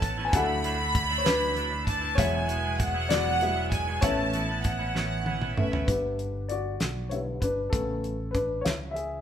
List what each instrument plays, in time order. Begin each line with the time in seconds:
Already playing: fretless electric bass A1, upright piano A3 B3 C#4, clean electric guitar B3 C#4 E4, violin section A5
0.02 kick, closed hi-hat
0.18 clean electric guitar B3 C#4 E4
0.25 upright piano G#5
0.32 fretless electric bass D2, clean electric guitar D3 F#3 A3 D4 E4, upright piano F#3 D4 E4 A4 F#5, violin section B5, kick, closed hi-hat
0.63 clean electric guitar F#3 A3 D4 E4, closed hi-hat
0.78 clean electric guitar A3 D4 E4
0.95 kick, closed hi-hat
1.09 clean electric guitar A3 D4 E4
1.18 upright piano C#5
1.23 clean electric guitar D3 F#3 A3 D4 E4, upright piano D4 B4, snare, closed hi-hat
1.55 clean electric guitar F#3 A3 D4 E4, closed hi-hat
1.70 clean electric guitar A3 D4 E4
1.87 violin section A5, kick, closed hi-hat
2.01 clean electric guitar A3 D4 E4
2.15 fretless electric bass E1, clean electric guitar E2 B2 F#3 G#3, upright piano F#3 G#3 E4 C#5, violin section G#5, kick, closed hi-hat
2.19 clean electric guitar B3 E4
2.48 clean electric guitar F#3 G#3 B3 E4, closed hi-hat
2.64 clean electric guitar F#3 G#3 B3 E4
2.78 violin section F#5, kick, closed hi-hat
2.94 clean electric guitar F#3 G#3 B3 E4
3.09 clean electric guitar E2 B2 F#3 G#3 B3 E4, upright piano F#4 D5, snare, closed hi-hat
3.41 clean electric guitar F#3 G#3 B3 E4, upright piano F#3 G#3 E4, closed hi-hat
3.56 clean electric guitar F#3 G#3 B3 E4
3.71 violin section G#5, kick, closed hi-hat
3.86 clean electric guitar F#3 G#3 B3 E4
4.01 fretless electric bass A1, clean electric guitar A2 E3 B3 C#4 E4, upright piano A3 B3 C#4 E4 C#5, violin section A5, kick, closed hi-hat
4.33 clean electric guitar E3 B3 C#4 E4, closed hi-hat
4.49 clean electric guitar B3 C#4 E4
4.64 violin section F#5, kick, closed hi-hat
4.79 clean electric guitar B3 C#4 E4
4.95 clean electric guitar A2 E3 B3 C#4 E4, snare
5.25 clean electric guitar E3 B3 C#4 E4, high tom
5.40 clean electric guitar B3 C#4 E4, mid tom
5.57 upright piano A3 B3 C#4, violin section E5, mid tom
5.72 clean electric guitar B3 C#4 E4, floor tom
5.86 fretless electric bass G1, upright piano D3 G3 B3 D4 B4, kick, closed hi-hat
6.19 closed hi-hat
6.48 upright piano F#4 D5, closed hi-hat
6.80 fretless electric bass B1, snare, closed hi-hat
7.09 upright piano D3 G3 B3 E4 C#5, closed hi-hat
7.40 fretless electric bass G1, upright piano D4 B4, kick, closed hi-hat
7.70 fretless electric bass A1, upright piano C#3 A3 B3 C#4 A4, kick, closed hi-hat
8.04 closed hi-hat
8.31 upright piano D4 B4, kick, closed hi-hat
8.61 upright piano E4 C#5
8.66 fretless electric bass C#2, snare, closed hi-hat
8.91 upright piano E5
8.95 upright piano G#4, closed hi-hat